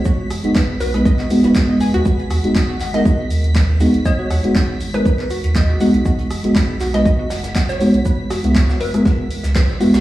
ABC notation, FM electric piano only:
X:1
M:4/4
L:1/16
Q:"Swing 16ths" 1/4=120
K:G#m
V:1 name="FM electric piano"
z3 [G,B,DF] z3 [G,B,DB] z2 [G,B,DF] [G,B,DB]4- [G,B,DB] | z3 [G,B,DF] z3 [G,B,DA] z6 [G,B,DF] z | z3 [G,B,DF] z3 [G,B,DA] z6 [G,B,DF] z | z3 [G,B,DF] z3 [G,B,DB] z6 [G,B,DF] z |
z3 [G,B,EF] z3 [G,B,EA] z6 [G,B,EF] z |]